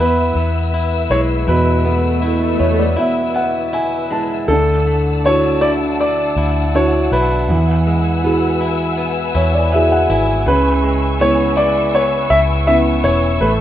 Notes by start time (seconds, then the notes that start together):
Already playing: E2 E3 B3 E4 B4 E5 E6, swell
0.00 B3 E4 B4
0.35 E2 B3
0.74 E4
1.10 B1 G#3 E4 C#5
1.47 E2 B2 E4 B4
1.85 B3
2.22 E4
2.59 E2 B3 C#5
2.79 D5
2.97 B3 E4 E5
3.34 B3 F#5
3.73 E4 G#5
4.10 G#3 E4 A5
4.48 D2 D3 D4 A4 F#5 A5 E6
4.87 A3
5.24 D4 E4 F#4 C#5
5.61 E4 D5
6.01 D4 D5
6.36 D2 E4
6.75 D4 E4 F#4 C#5
7.12 B1 E4 B4
7.49 E2 E3 B4 G#5 E6
7.87 G#3
8.24 B3 E4 F#4 G#4
8.61 E4
8.98 B3
9.35 E2 E4 C#5
9.54 D5
9.72 B3 E4 F#4 G#4 E5
9.92 F#5
10.10 G#1 E4 G#5
10.45 C#2 C#3 B4 C#6 E6
10.84 G#3
11.19 G#3 B3 E4 C#5
11.56 E4 D5
11.94 B3 C#5
12.30 C#2 E4 E5
12.67 B3 C#4 E4 E5
13.04 E1 E4 C#5
13.41 A1 A2 A3 A4 B4 E5